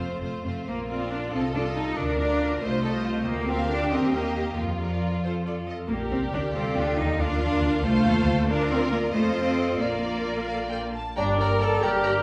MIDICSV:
0, 0, Header, 1, 11, 480
1, 0, Start_track
1, 0, Key_signature, -2, "major"
1, 0, Tempo, 450789
1, 709, Time_signature, 6, 3, 24, 8
1, 1179, Tempo, 433526
1, 10299, Tempo, 455581
1, 12219, Tempo, 434783
1, 13389, End_track
2, 0, Start_track
2, 0, Title_t, "Clarinet"
2, 0, Program_c, 0, 71
2, 12214, Note_on_c, 0, 82, 43
2, 12898, Note_off_c, 0, 82, 0
2, 12946, Note_on_c, 0, 82, 49
2, 13389, Note_off_c, 0, 82, 0
2, 13389, End_track
3, 0, Start_track
3, 0, Title_t, "Flute"
3, 0, Program_c, 1, 73
3, 12233, Note_on_c, 1, 74, 58
3, 12456, Note_off_c, 1, 74, 0
3, 12486, Note_on_c, 1, 82, 57
3, 12553, Note_off_c, 1, 82, 0
3, 12715, Note_on_c, 1, 81, 61
3, 12959, Note_on_c, 1, 79, 59
3, 12975, Note_off_c, 1, 81, 0
3, 13389, Note_off_c, 1, 79, 0
3, 13389, End_track
4, 0, Start_track
4, 0, Title_t, "Violin section"
4, 0, Program_c, 2, 48
4, 954, Note_on_c, 2, 74, 32
4, 1416, Note_off_c, 2, 74, 0
4, 1437, Note_on_c, 2, 75, 35
4, 1664, Note_off_c, 2, 75, 0
4, 1683, Note_on_c, 2, 75, 38
4, 2138, Note_off_c, 2, 75, 0
4, 2391, Note_on_c, 2, 74, 41
4, 2856, Note_off_c, 2, 74, 0
4, 2863, Note_on_c, 2, 75, 45
4, 3095, Note_off_c, 2, 75, 0
4, 3112, Note_on_c, 2, 75, 49
4, 3569, Note_off_c, 2, 75, 0
4, 3820, Note_on_c, 2, 77, 46
4, 4278, Note_off_c, 2, 77, 0
4, 4278, Note_on_c, 2, 75, 42
4, 4512, Note_off_c, 2, 75, 0
4, 4525, Note_on_c, 2, 75, 43
4, 5005, Note_off_c, 2, 75, 0
4, 5260, Note_on_c, 2, 74, 35
4, 5737, Note_off_c, 2, 74, 0
4, 5758, Note_on_c, 2, 72, 39
4, 5846, Note_off_c, 2, 72, 0
4, 6012, Note_on_c, 2, 74, 41
4, 6100, Note_off_c, 2, 74, 0
4, 6254, Note_on_c, 2, 75, 41
4, 6342, Note_off_c, 2, 75, 0
4, 6510, Note_on_c, 2, 74, 44
4, 7890, Note_off_c, 2, 74, 0
4, 7923, Note_on_c, 2, 77, 48
4, 8603, Note_off_c, 2, 77, 0
4, 8616, Note_on_c, 2, 77, 53
4, 9320, Note_off_c, 2, 77, 0
4, 9337, Note_on_c, 2, 74, 57
4, 10010, Note_off_c, 2, 74, 0
4, 10061, Note_on_c, 2, 75, 54
4, 10780, Note_off_c, 2, 75, 0
4, 10786, Note_on_c, 2, 74, 44
4, 11458, Note_off_c, 2, 74, 0
4, 11502, Note_on_c, 2, 77, 47
4, 11586, Note_off_c, 2, 77, 0
4, 11742, Note_on_c, 2, 79, 44
4, 11826, Note_off_c, 2, 79, 0
4, 11991, Note_on_c, 2, 81, 44
4, 12220, Note_off_c, 2, 81, 0
4, 12233, Note_on_c, 2, 82, 45
4, 12322, Note_off_c, 2, 82, 0
4, 12480, Note_on_c, 2, 82, 44
4, 12569, Note_off_c, 2, 82, 0
4, 12723, Note_on_c, 2, 82, 40
4, 12811, Note_off_c, 2, 82, 0
4, 12946, Note_on_c, 2, 82, 45
4, 13034, Note_off_c, 2, 82, 0
4, 13189, Note_on_c, 2, 82, 46
4, 13277, Note_off_c, 2, 82, 0
4, 13389, End_track
5, 0, Start_track
5, 0, Title_t, "Oboe"
5, 0, Program_c, 3, 68
5, 12237, Note_on_c, 3, 74, 59
5, 12958, Note_on_c, 3, 70, 55
5, 12975, Note_off_c, 3, 74, 0
5, 13389, Note_off_c, 3, 70, 0
5, 13389, End_track
6, 0, Start_track
6, 0, Title_t, "Violin section"
6, 0, Program_c, 4, 48
6, 0, Note_on_c, 4, 65, 30
6, 0, Note_on_c, 4, 72, 31
6, 215, Note_off_c, 4, 65, 0
6, 216, Note_off_c, 4, 72, 0
6, 233, Note_on_c, 4, 65, 30
6, 233, Note_on_c, 4, 72, 29
6, 469, Note_off_c, 4, 65, 0
6, 469, Note_off_c, 4, 72, 0
6, 481, Note_on_c, 4, 65, 29
6, 481, Note_on_c, 4, 72, 28
6, 704, Note_off_c, 4, 65, 0
6, 711, Note_off_c, 4, 72, 0
6, 717, Note_on_c, 4, 65, 40
6, 1381, Note_off_c, 4, 65, 0
6, 1418, Note_on_c, 4, 69, 41
6, 2134, Note_off_c, 4, 69, 0
6, 2140, Note_on_c, 4, 70, 56
6, 2846, Note_off_c, 4, 70, 0
6, 2863, Note_on_c, 4, 72, 59
6, 3091, Note_on_c, 4, 69, 57
6, 3099, Note_off_c, 4, 72, 0
6, 3179, Note_off_c, 4, 69, 0
6, 3323, Note_on_c, 4, 65, 48
6, 3411, Note_off_c, 4, 65, 0
6, 3555, Note_on_c, 4, 67, 60
6, 4976, Note_off_c, 4, 67, 0
6, 5009, Note_on_c, 4, 65, 45
6, 6112, Note_off_c, 4, 65, 0
6, 6485, Note_on_c, 4, 67, 52
6, 7878, Note_off_c, 4, 67, 0
6, 7922, Note_on_c, 4, 65, 49
6, 8627, Note_off_c, 4, 65, 0
6, 8628, Note_on_c, 4, 69, 60
6, 9341, Note_off_c, 4, 69, 0
6, 9348, Note_on_c, 4, 70, 71
6, 10046, Note_off_c, 4, 70, 0
6, 10064, Note_on_c, 4, 72, 62
6, 10768, Note_off_c, 4, 72, 0
6, 10784, Note_on_c, 4, 74, 53
6, 11842, Note_off_c, 4, 74, 0
6, 12213, Note_on_c, 4, 79, 46
6, 12218, Note_on_c, 4, 74, 46
6, 12301, Note_off_c, 4, 79, 0
6, 12306, Note_off_c, 4, 74, 0
6, 12475, Note_on_c, 4, 74, 40
6, 12476, Note_on_c, 4, 79, 43
6, 12563, Note_off_c, 4, 74, 0
6, 12564, Note_off_c, 4, 79, 0
6, 12702, Note_on_c, 4, 79, 44
6, 12712, Note_on_c, 4, 74, 44
6, 12790, Note_off_c, 4, 79, 0
6, 12800, Note_off_c, 4, 74, 0
6, 12948, Note_on_c, 4, 74, 46
6, 12950, Note_on_c, 4, 79, 45
6, 13037, Note_off_c, 4, 74, 0
6, 13039, Note_off_c, 4, 79, 0
6, 13180, Note_on_c, 4, 74, 46
6, 13189, Note_on_c, 4, 79, 45
6, 13269, Note_off_c, 4, 74, 0
6, 13277, Note_off_c, 4, 79, 0
6, 13389, End_track
7, 0, Start_track
7, 0, Title_t, "Viola section"
7, 0, Program_c, 5, 48
7, 0, Note_on_c, 5, 57, 34
7, 0, Note_on_c, 5, 60, 34
7, 212, Note_off_c, 5, 57, 0
7, 212, Note_off_c, 5, 60, 0
7, 225, Note_on_c, 5, 57, 30
7, 225, Note_on_c, 5, 60, 29
7, 450, Note_off_c, 5, 57, 0
7, 450, Note_off_c, 5, 60, 0
7, 463, Note_on_c, 5, 57, 30
7, 463, Note_on_c, 5, 60, 32
7, 701, Note_off_c, 5, 57, 0
7, 701, Note_off_c, 5, 60, 0
7, 947, Note_on_c, 5, 65, 36
7, 948, Note_on_c, 5, 70, 36
7, 1403, Note_off_c, 5, 65, 0
7, 1413, Note_off_c, 5, 70, 0
7, 1413, Note_on_c, 5, 69, 36
7, 1416, Note_on_c, 5, 65, 38
7, 1635, Note_off_c, 5, 65, 0
7, 1637, Note_off_c, 5, 69, 0
7, 1648, Note_on_c, 5, 65, 37
7, 1651, Note_on_c, 5, 69, 34
7, 2120, Note_off_c, 5, 65, 0
7, 2121, Note_off_c, 5, 69, 0
7, 2368, Note_on_c, 5, 70, 42
7, 2370, Note_on_c, 5, 65, 45
7, 2838, Note_off_c, 5, 65, 0
7, 2845, Note_off_c, 5, 70, 0
7, 2851, Note_on_c, 5, 65, 46
7, 2855, Note_on_c, 5, 72, 45
7, 3085, Note_off_c, 5, 65, 0
7, 3085, Note_off_c, 5, 72, 0
7, 3098, Note_on_c, 5, 65, 44
7, 3098, Note_on_c, 5, 72, 47
7, 3562, Note_off_c, 5, 65, 0
7, 3562, Note_off_c, 5, 72, 0
7, 3805, Note_on_c, 5, 65, 45
7, 3805, Note_on_c, 5, 70, 47
7, 4262, Note_off_c, 5, 70, 0
7, 4271, Note_off_c, 5, 65, 0
7, 4276, Note_on_c, 5, 70, 45
7, 4278, Note_on_c, 5, 67, 42
7, 4509, Note_off_c, 5, 67, 0
7, 4511, Note_off_c, 5, 70, 0
7, 4522, Note_on_c, 5, 67, 40
7, 4524, Note_on_c, 5, 70, 38
7, 5003, Note_off_c, 5, 67, 0
7, 5005, Note_off_c, 5, 70, 0
7, 5254, Note_on_c, 5, 70, 34
7, 5255, Note_on_c, 5, 65, 34
7, 5734, Note_off_c, 5, 70, 0
7, 5735, Note_off_c, 5, 65, 0
7, 5757, Note_on_c, 5, 69, 32
7, 5758, Note_on_c, 5, 65, 32
7, 5975, Note_off_c, 5, 65, 0
7, 5977, Note_off_c, 5, 69, 0
7, 5989, Note_on_c, 5, 65, 33
7, 5990, Note_on_c, 5, 69, 33
7, 6470, Note_off_c, 5, 65, 0
7, 6471, Note_off_c, 5, 69, 0
7, 6482, Note_on_c, 5, 70, 40
7, 6484, Note_on_c, 5, 67, 39
7, 7161, Note_off_c, 5, 70, 0
7, 7162, Note_off_c, 5, 67, 0
7, 7203, Note_on_c, 5, 69, 46
7, 7205, Note_on_c, 5, 65, 47
7, 7898, Note_off_c, 5, 65, 0
7, 7912, Note_on_c, 5, 65, 48
7, 7914, Note_on_c, 5, 70, 50
7, 7919, Note_off_c, 5, 69, 0
7, 8607, Note_off_c, 5, 65, 0
7, 8609, Note_off_c, 5, 70, 0
7, 8627, Note_on_c, 5, 72, 56
7, 8629, Note_on_c, 5, 65, 58
7, 9327, Note_off_c, 5, 65, 0
7, 9340, Note_off_c, 5, 72, 0
7, 9345, Note_on_c, 5, 70, 56
7, 9347, Note_on_c, 5, 65, 52
7, 10014, Note_off_c, 5, 70, 0
7, 10015, Note_off_c, 5, 65, 0
7, 10058, Note_on_c, 5, 69, 56
7, 10061, Note_on_c, 5, 65, 58
7, 10766, Note_off_c, 5, 65, 0
7, 10779, Note_off_c, 5, 69, 0
7, 10787, Note_on_c, 5, 65, 42
7, 10787, Note_on_c, 5, 70, 45
7, 11981, Note_off_c, 5, 65, 0
7, 12005, Note_off_c, 5, 70, 0
7, 12230, Note_on_c, 5, 62, 65
7, 12454, Note_off_c, 5, 62, 0
7, 12474, Note_on_c, 5, 70, 71
7, 12707, Note_off_c, 5, 70, 0
7, 12715, Note_on_c, 5, 69, 68
7, 12946, Note_on_c, 5, 67, 79
7, 12949, Note_off_c, 5, 69, 0
7, 13389, Note_off_c, 5, 67, 0
7, 13389, End_track
8, 0, Start_track
8, 0, Title_t, "French horn section"
8, 0, Program_c, 6, 60
8, 12223, Note_on_c, 6, 58, 47
8, 12225, Note_on_c, 6, 67, 49
8, 13389, Note_off_c, 6, 58, 0
8, 13389, Note_off_c, 6, 67, 0
8, 13389, End_track
9, 0, Start_track
9, 0, Title_t, "Cello section"
9, 0, Program_c, 7, 48
9, 221, Note_on_c, 7, 41, 32
9, 306, Note_off_c, 7, 41, 0
9, 463, Note_on_c, 7, 41, 32
9, 548, Note_off_c, 7, 41, 0
9, 711, Note_on_c, 7, 58, 56
9, 929, Note_off_c, 7, 58, 0
9, 950, Note_on_c, 7, 60, 51
9, 1177, Note_off_c, 7, 60, 0
9, 1179, Note_on_c, 7, 62, 54
9, 1421, Note_off_c, 7, 62, 0
9, 1421, Note_on_c, 7, 60, 52
9, 1509, Note_off_c, 7, 60, 0
9, 1659, Note_on_c, 7, 62, 56
9, 1748, Note_off_c, 7, 62, 0
9, 1891, Note_on_c, 7, 63, 60
9, 2127, Note_off_c, 7, 63, 0
9, 2135, Note_on_c, 7, 62, 67
9, 2362, Note_off_c, 7, 62, 0
9, 2375, Note_on_c, 7, 62, 68
9, 2848, Note_off_c, 7, 62, 0
9, 2856, Note_on_c, 7, 57, 68
9, 3556, Note_off_c, 7, 57, 0
9, 3561, Note_on_c, 7, 58, 82
9, 3803, Note_off_c, 7, 58, 0
9, 3804, Note_on_c, 7, 60, 72
9, 4032, Note_on_c, 7, 62, 72
9, 4042, Note_off_c, 7, 60, 0
9, 4271, Note_off_c, 7, 62, 0
9, 4276, Note_on_c, 7, 60, 66
9, 4519, Note_off_c, 7, 60, 0
9, 4521, Note_on_c, 7, 58, 63
9, 5013, Note_off_c, 7, 58, 0
9, 5015, Note_on_c, 7, 53, 46
9, 6213, Note_off_c, 7, 53, 0
9, 6481, Note_on_c, 7, 58, 58
9, 6569, Note_off_c, 7, 58, 0
9, 6724, Note_on_c, 7, 60, 57
9, 6813, Note_off_c, 7, 60, 0
9, 6963, Note_on_c, 7, 62, 63
9, 7051, Note_off_c, 7, 62, 0
9, 7197, Note_on_c, 7, 60, 61
9, 7437, Note_off_c, 7, 60, 0
9, 7444, Note_on_c, 7, 62, 66
9, 7682, Note_on_c, 7, 63, 68
9, 7683, Note_off_c, 7, 62, 0
9, 7920, Note_off_c, 7, 63, 0
9, 7922, Note_on_c, 7, 62, 76
9, 8145, Note_off_c, 7, 62, 0
9, 8158, Note_on_c, 7, 62, 72
9, 8618, Note_off_c, 7, 62, 0
9, 8624, Note_on_c, 7, 57, 72
9, 9325, Note_off_c, 7, 57, 0
9, 9344, Note_on_c, 7, 62, 86
9, 9581, Note_off_c, 7, 62, 0
9, 9583, Note_on_c, 7, 60, 78
9, 9818, Note_off_c, 7, 60, 0
9, 9820, Note_on_c, 7, 58, 68
9, 9909, Note_off_c, 7, 58, 0
9, 10064, Note_on_c, 7, 57, 65
9, 10153, Note_off_c, 7, 57, 0
9, 10304, Note_on_c, 7, 60, 65
9, 10770, Note_off_c, 7, 60, 0
9, 10787, Note_on_c, 7, 58, 57
9, 11985, Note_off_c, 7, 58, 0
9, 12225, Note_on_c, 7, 43, 59
9, 12864, Note_off_c, 7, 43, 0
9, 12947, Note_on_c, 7, 43, 50
9, 13389, Note_off_c, 7, 43, 0
9, 13389, End_track
10, 0, Start_track
10, 0, Title_t, "Bassoon"
10, 0, Program_c, 8, 70
10, 12224, Note_on_c, 8, 55, 52
10, 12903, Note_off_c, 8, 55, 0
10, 12945, Note_on_c, 8, 55, 54
10, 13389, Note_off_c, 8, 55, 0
10, 13389, End_track
11, 0, Start_track
11, 0, Title_t, "Double bass section"
11, 0, Program_c, 10, 48
11, 225, Note_on_c, 10, 29, 30
11, 310, Note_off_c, 10, 29, 0
11, 475, Note_on_c, 10, 29, 32
11, 560, Note_off_c, 10, 29, 0
11, 712, Note_on_c, 10, 34, 40
11, 1337, Note_off_c, 10, 34, 0
11, 1419, Note_on_c, 10, 36, 44
11, 2051, Note_off_c, 10, 36, 0
11, 2135, Note_on_c, 10, 38, 53
11, 2773, Note_off_c, 10, 38, 0
11, 2860, Note_on_c, 10, 36, 51
11, 3488, Note_off_c, 10, 36, 0
11, 3567, Note_on_c, 10, 38, 59
11, 4195, Note_off_c, 10, 38, 0
11, 4280, Note_on_c, 10, 39, 52
11, 4925, Note_off_c, 10, 39, 0
11, 5011, Note_on_c, 10, 41, 47
11, 5658, Note_off_c, 10, 41, 0
11, 5743, Note_on_c, 10, 41, 39
11, 6394, Note_off_c, 10, 41, 0
11, 6484, Note_on_c, 10, 34, 50
11, 6708, Note_off_c, 10, 34, 0
11, 6725, Note_on_c, 10, 36, 44
11, 6948, Note_off_c, 10, 36, 0
11, 6976, Note_on_c, 10, 38, 51
11, 7194, Note_off_c, 10, 38, 0
11, 7210, Note_on_c, 10, 36, 51
11, 7431, Note_off_c, 10, 36, 0
11, 7445, Note_on_c, 10, 38, 49
11, 7667, Note_off_c, 10, 38, 0
11, 7681, Note_on_c, 10, 39, 54
11, 7902, Note_off_c, 10, 39, 0
11, 7910, Note_on_c, 10, 38, 59
11, 8133, Note_off_c, 10, 38, 0
11, 8153, Note_on_c, 10, 39, 52
11, 8373, Note_off_c, 10, 39, 0
11, 8380, Note_on_c, 10, 38, 56
11, 8604, Note_off_c, 10, 38, 0
11, 8618, Note_on_c, 10, 36, 62
11, 8841, Note_off_c, 10, 36, 0
11, 8859, Note_on_c, 10, 39, 64
11, 9082, Note_off_c, 10, 39, 0
11, 9098, Note_on_c, 10, 38, 67
11, 9322, Note_off_c, 10, 38, 0
11, 9338, Note_on_c, 10, 38, 57
11, 10011, Note_off_c, 10, 38, 0
11, 10063, Note_on_c, 10, 41, 52
11, 10780, Note_on_c, 10, 34, 48
11, 10781, Note_off_c, 10, 41, 0
11, 11977, Note_off_c, 10, 34, 0
11, 12230, Note_on_c, 10, 31, 52
11, 12866, Note_off_c, 10, 31, 0
11, 12940, Note_on_c, 10, 31, 50
11, 13389, Note_off_c, 10, 31, 0
11, 13389, End_track
0, 0, End_of_file